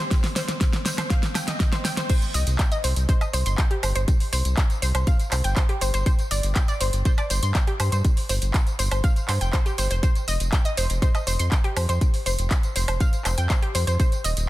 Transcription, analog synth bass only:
2.34 C2
2.47 C2
2.84 C2
2.96 C2
3.33 C2
3.46 G1
3.83 G1
3.95 G1
4.33 C2
4.45 C2
4.82 C2
4.95 C2
5.32 C2
5.44 G1
5.81 G1
5.94 G1
6.31 G1
6.43 G1
6.81 G1
6.93 G1
7.30 G1
7.43 G2
7.80 G2
7.92 G2
8.29 G1
8.42 G1
8.79 G1
8.91 G1
9.29 G2
9.41 F1
9.78 G1
9.91 F1
10.28 F1
10.40 F1
10.77 F1
10.90 F1
11.27 F1
11.39 F2
11.77 F2
11.89 F2
12.26 F1
12.38 F1
12.76 F1
12.88 F1
13.25 F1
13.38 F2
13.75 F2
13.87 F2
14.24 D#1
14.37 D#1

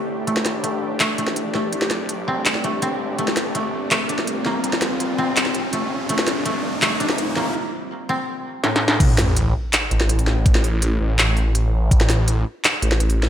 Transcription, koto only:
Already playing: A3 C4
0.27 A3
0.64 A3
1.00 A3
1.18 A3
1.55 A3
2.28 C4
2.64 A3
2.82 C4
3.19 A3
3.55 A3
3.91 A3
4.09 D4
4.46 A#3
5.18 C4
5.73 A3
6.10 A3
6.46 A3
6.82 A3
7.00 D4
7.36 A#3
8.09 C4
8.64 A2

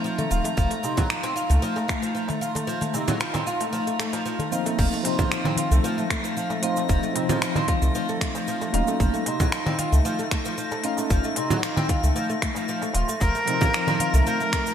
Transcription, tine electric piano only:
Already playing: F3 C4 D#4
0.86 D#4
2.97 D#4
4.51 F3 A#3 C4 D#4
5.03 F3 C4 D#4
6.62 F3 C4 D#4
7.13 F3 C4 D#4
8.72 F#3 A#3 C#4 D#4
9.28 D#4
10.84 C#4 D#4
11.39 D#4
13.46 F3 C4 D#4

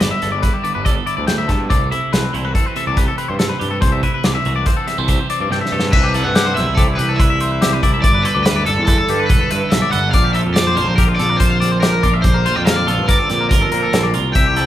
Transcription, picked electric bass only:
0.02 G1
0.23 G1
0.76 G1
1.18 D2
1.28 D2
1.50 G2
1.71 C2
2.14 C2
2.35 C2
2.87 C2
3.30 G2
3.40 G2
3.61 G2
3.82 C2
4.25 C2
4.46 C2
4.98 C2
5.40 G2
5.51 G2
5.72 G2
5.93 C2
6.25 G2
6.57 C2
6.68 C2
6.99 C2
7.83 C2
8.04 G1
8.35 D2
8.67 G1
8.78 E2
9.09 G2
9.30 E1
9.52 G2
9.73 B1
9.94 G1
10.14 A#1
10.46 F2
10.78 A#1
10.88 A#1
11.20 A#1
12.04 A#1
12.25 A#1
12.56 F2
12.88 A#1
12.99 G2
13.31 A#2
13.51 G1
13.73 A#2
13.94 A#1
14.16 C2
14.36 C2

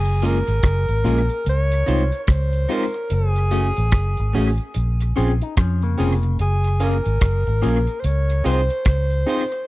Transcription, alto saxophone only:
Already playing: G#4
0.25 A#4
1.49 C#5
2.24 C#5
2.31 C5
2.73 A#4
3.14 G#4
6.41 G#4
6.83 A#4
8.00 C5
8.06 C#5
8.47 C5
8.88 C5

